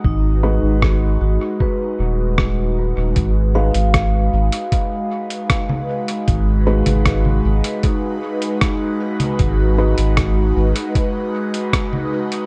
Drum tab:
HH |----------------|x--xx--xx--xx--x|x--xx--xx--xx--x|x--xx--xx--xx--x|
SD |----r-------r---|----r-------r---|----r-------r---|----r-------r---|
CG |----------------|-------------O--|---O-O---------O|-------------O--|
BD |o---o---o---o---|o---o---o---o---|o---o---o---o---|o---o---o---o---|